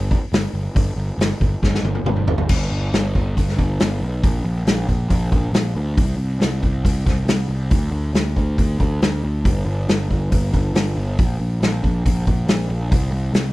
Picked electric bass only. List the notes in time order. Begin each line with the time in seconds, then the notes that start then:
Already playing: G1
0.33 G1
0.53 G1
0.75 G1
0.96 G1
1.18 G1
1.40 G1
1.62 G1
1.83 G1
2.04 G1
2.49 G1
2.70 G1
2.93 G1
3.15 G1
3.36 G1
3.58 G1
3.81 G1
4.02 B1
4.24 A#1
4.45 A#1
4.65 A#1
4.89 A#1
5.10 A#1
5.32 A#1
5.52 A#1
5.75 D2
5.97 C2
6.17 C2
6.40 C2
6.63 C2
6.85 C2
7.06 C2
7.25 C2
7.48 C2
7.71 D2
7.91 D2
8.13 D2
8.37 D2
8.58 D2
8.79 D2
9.02 D2
9.24 D2
9.45 G1
9.66 G1
9.88 G1
10.10 G1
10.31 G1
10.54 G1
10.74 G1
10.96 G1
11.19 A#1
11.40 A#1
11.61 A#1
11.83 A#1
12.05 A#1
12.27 A#1
12.47 A#1
12.70 A#1
12.91 C2
13.12 C2
13.32 C2